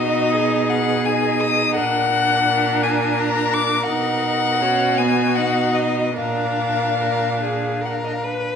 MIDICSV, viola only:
0, 0, Header, 1, 2, 480
1, 0, Start_track
1, 0, Tempo, 712589
1, 1188, Time_signature, 3, 2, 24, 8
1, 3112, Tempo, 776197
1, 4072, Tempo, 825309
1, 5459, End_track
2, 0, Start_track
2, 0, Title_t, "Viola"
2, 0, Program_c, 0, 41
2, 0, Note_on_c, 0, 63, 75
2, 681, Note_off_c, 0, 63, 0
2, 708, Note_on_c, 0, 63, 74
2, 1187, Note_on_c, 0, 62, 68
2, 1198, Note_off_c, 0, 63, 0
2, 1420, Note_off_c, 0, 62, 0
2, 1424, Note_on_c, 0, 62, 80
2, 2602, Note_off_c, 0, 62, 0
2, 2623, Note_on_c, 0, 63, 65
2, 3106, Note_on_c, 0, 61, 72
2, 3116, Note_off_c, 0, 63, 0
2, 3343, Note_on_c, 0, 59, 77
2, 3352, Note_off_c, 0, 61, 0
2, 3580, Note_on_c, 0, 63, 64
2, 3589, Note_off_c, 0, 59, 0
2, 4066, Note_off_c, 0, 63, 0
2, 4069, Note_on_c, 0, 62, 64
2, 5362, Note_off_c, 0, 62, 0
2, 5459, End_track
0, 0, End_of_file